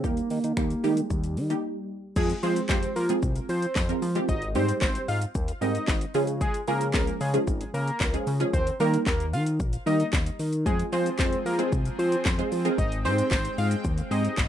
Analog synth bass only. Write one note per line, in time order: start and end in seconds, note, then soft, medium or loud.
0.04 0.21 D#2 loud
0.31 0.39 D#3 loud
0.44 0.53 D#3 loud
0.57 0.74 D#2 loud
0.84 1.01 D#3 loud
1.10 1.38 D#2 loud
1.37 1.54 D#3 loud
2.16 2.34 F2 loud
2.43 2.60 F3 loud
2.69 2.87 F2 loud
2.96 3.13 F3 loud
3.23 3.40 C2 loud
3.49 3.66 F3 loud
3.76 3.93 F2 loud
4.02 4.19 F3 loud
4.29 4.57 G#1 loud
4.55 4.73 G#2 loud
4.82 4.99 G#1 loud
5.08 5.26 G#2 loud
5.35 5.52 D#2 loud
5.61 5.79 G#2 medium
5.88 6.05 G#1 loud
6.14 6.49 C#3 loud
6.68 6.95 C#3 loud
6.94 7.11 C#2 loud
7.21 7.38 C#3 loud
7.47 7.65 G#1 loud
7.74 7.91 C#3 loud
8.01 8.18 C#2 loud
8.27 8.44 C#3 loud
8.54 8.71 D#2 loud
8.80 8.97 D#3 loud
9.07 9.35 D#2 loud
9.33 9.62 D#3 loud
9.60 9.77 A#1 loud
9.86 10.04 D#3 medium
10.13 10.30 D#2 loud
10.39 10.68 D#3 loud
10.66 10.83 F2 loud
10.93 11.10 F3 loud
11.19 11.36 F2 loud
11.46 11.63 F3 loud
11.72 11.90 C2 loud
11.99 12.16 F3 loud
12.26 12.43 F2 loud
12.52 12.69 F3 loud
12.78 13.07 G#1 loud
13.05 13.22 G#2 loud
13.31 13.49 G#1 loud
13.58 13.75 G#2 loud
13.85 14.02 D#2 loud
14.11 14.28 G#2 medium
14.38 14.48 G#1 loud